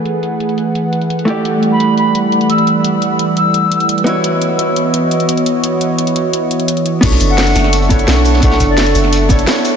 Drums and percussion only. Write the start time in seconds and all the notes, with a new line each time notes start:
0.05 closed hi-hat
0.23 closed hi-hat
0.40 closed hi-hat
0.49 closed hi-hat
0.58 closed hi-hat
0.75 closed hi-hat
0.93 closed hi-hat
1.01 closed hi-hat
1.10 closed hi-hat
1.19 closed hi-hat
1.28 closed hi-hat
1.45 closed hi-hat
1.63 closed hi-hat
1.80 closed hi-hat
1.98 closed hi-hat
2.15 closed hi-hat
2.32 closed hi-hat
2.41 closed hi-hat
2.50 closed hi-hat
2.58 closed hi-hat
2.67 closed hi-hat
2.84 closed hi-hat
3.02 closed hi-hat
3.19 closed hi-hat
3.37 closed hi-hat
3.54 closed hi-hat
3.72 closed hi-hat
3.80 closed hi-hat
3.89 closed hi-hat
3.98 closed hi-hat
4.07 closed hi-hat
4.24 closed hi-hat
4.42 closed hi-hat
4.59 closed hi-hat
4.76 closed hi-hat
4.94 closed hi-hat
5.11 closed hi-hat
5.20 closed hi-hat
5.29 closed hi-hat
5.37 closed hi-hat
5.46 closed hi-hat
5.64 closed hi-hat
5.81 closed hi-hat
5.98 closed hi-hat
6.07 closed hi-hat
6.16 closed hi-hat
6.33 closed hi-hat
6.51 closed hi-hat
6.60 closed hi-hat
6.68 closed hi-hat
6.77 closed hi-hat
6.86 closed hi-hat
7.02 kick, closed hi-hat, crash
7.12 snare
7.20 closed hi-hat, shaker
7.38 snare, closed hi-hat, open hi-hat
7.47 snare, closed hi-hat
7.55 snare, closed hi-hat, open hi-hat, shaker
7.64 snare
7.73 closed hi-hat
7.82 closed hi-hat
7.90 kick, closed hi-hat, shaker
7.99 closed hi-hat, shaker
8.08 snare, closed hi-hat
8.25 closed hi-hat, open hi-hat, shaker
8.34 snare
8.42 kick, closed hi-hat
8.51 snare
8.60 kick, closed hi-hat, shaker
8.77 snare, closed hi-hat
8.86 closed hi-hat
8.95 closed hi-hat, open hi-hat, shaker
9.04 snare
9.13 closed hi-hat
9.29 kick, closed hi-hat, shaker
9.39 closed hi-hat, shaker
9.47 snare, closed hi-hat
9.57 closed hi-hat
9.65 closed hi-hat, open hi-hat, shaker